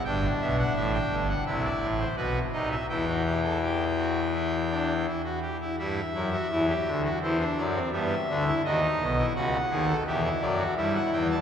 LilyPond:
<<
  \new Staff \with { instrumentName = "Pipe organ" } { \time 4/4 \key e \minor \tempo 4 = 84 << { g''8 e''16 fis''16 e''16 g''8 fis''16 e''16 d''8 c''16 b'8 dis''16 e''16 | g''2.~ g''8 r8 | e''2 c''8 d''8 e''4 | dis''4 fis''4 e''8 d''8 e''16 fis''16 g''16 a''16 | } \\ { d'2 e'4 fis'8 dis'8 | e'16 fis'16 g'16 a'16 g'8 fis'8 e'8 d'8 e'16 fis'16 g'16 e'16 | e'8 e'16 fis'16 e'16 g'8 fis'16 e'16 d'8 c'16 b8 d'16 e'16 | fis'16 dis'8 e'16 fis'8 gis'16 a'16 g'16 e'8 fis'16 e'4 | } >> }
  \new Staff \with { instrumentName = "Pipe organ" } { \clef bass \time 4/4 \key e \minor <g,, g,>8 <b,, b,>8 <a,, a,>8 <g,, g,>8 <c, c>8 <a,, a,>8 <b,, b,>8 <c, c>8 | <e, e>2.~ <e, e>8 r8 | <g, g>8 <fis, fis>8 <e, e>8 <d, d>8 <e, e>8 <fis, fis>8 <g, g>8 <d, d>8 | <dis, dis>8 <b,, b,>8 <cis, cis>8 <dis, dis>8 <e, e>8 <fis, fis>8 <g, g>8 <e, e>8 | }
>>